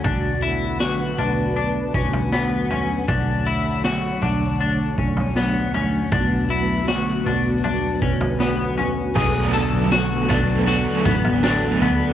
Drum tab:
CC |----------------|----------------|----------------|x---------------|
TB |----------------|----------------|----------------|x-x-x-x-x-x-x---|
SD |----o-------o---|----o-------o---|----o-------o---|----o-------o---|
FT |o-----o----o--o-|o-----o----o--o-|o-----o-o--o--o-|o-----o----o--o-|
BD |o---------o-----|o---------o-----|o---------o-----|o-----o---o-----|